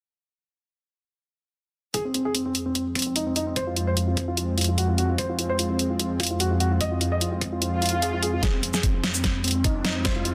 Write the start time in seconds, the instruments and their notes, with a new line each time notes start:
1.94 analog synth pad F2 F3 G#3 C4, grand piano G#4, kick, closed hi-hat
2.05 grand piano C4
2.14 grand piano C4, closed hi-hat
2.25 grand piano G#4
2.35 grand piano C4, closed hi-hat
2.45 grand piano C4
2.55 closed hi-hat
2.66 grand piano C4
2.75 grand piano C4, closed hi-hat
2.95 grand piano C4, kick, closed hi-hat
2.99 closed hi-hat
3.02 closed hi-hat
3.06 grand piano C4
3.16 grand piano D#4, closed hi-hat
3.27 grand piano C4
3.36 grand piano D#4, closed hi-hat
3.47 grand piano C4
3.56 grand piano C5, kick, closed hi-hat
3.67 grand piano F4
3.76 grand piano F4, closed hi-hat
3.87 grand piano C5
3.97 grand piano F4, closed hi-hat
4.08 grand piano F4
4.17 kick, closed hi-hat
4.28 grand piano F4
4.37 grand piano F4, closed hi-hat
4.58 grand piano F4, closed hi-hat
4.61 closed hi-hat
4.64 closed hi-hat
4.68 grand piano F4
4.78 grand piano F#4, closed hi-hat
4.89 grand piano F4
4.98 grand piano F#4, closed hi-hat
5.09 grand piano F4
5.18 grand piano C5, kick, closed hi-hat
5.29 grand piano F4
5.39 grand piano F4, closed hi-hat
5.50 grand piano C5
5.59 grand piano F4, closed hi-hat
5.70 grand piano F4
5.79 closed hi-hat
5.90 grand piano F4
6.00 grand piano F4, closed hi-hat
6.20 grand piano F4, kick, closed hi-hat
6.23 closed hi-hat
6.27 closed hi-hat
6.31 grand piano F4
6.40 grand piano F#4, closed hi-hat
6.51 grand piano F4
6.60 grand piano F#4, closed hi-hat
6.71 grand piano F4
6.81 grand piano D#5, kick, closed hi-hat
6.91 grand piano F4
7.01 grand piano F4, closed hi-hat
7.12 grand piano D#5
7.21 grand piano F4, closed hi-hat
7.32 grand piano F4
7.41 kick, closed hi-hat
7.52 grand piano F4
7.62 grand piano F4, closed hi-hat, swell
7.82 grand piano F4, closed hi-hat
7.86 closed hi-hat
7.89 closed hi-hat
7.93 grand piano F4
8.02 grand piano G#4, closed hi-hat
8.13 grand piano F4
8.23 grand piano G#4, closed hi-hat
8.33 grand piano F4
8.43 analog synth pad F2 F3 G#3 C4, grand piano G#4, kick, snare, closed hi-hat, riser
8.54 grand piano C4
8.63 grand piano C4, closed hi-hat
8.74 grand piano G#4, snare, shaker
8.83 grand piano C4, kick, closed hi-hat
8.94 grand piano C4
9.04 snare, closed hi-hat
9.14 grand piano C4, shaker
9.24 grand piano C4, kick, snare, closed hi-hat
9.44 grand piano C4, closed hi-hat
9.48 closed hi-hat
9.51 closed hi-hat
9.55 grand piano C4
9.64 grand piano D#4, kick, closed hi-hat
9.75 grand piano C4
9.85 grand piano D#4, snare, closed hi-hat
9.95 grand piano C4
10.05 grand piano C5, kick, snare, closed hi-hat
10.16 grand piano F4
10.25 grand piano F4, closed hi-hat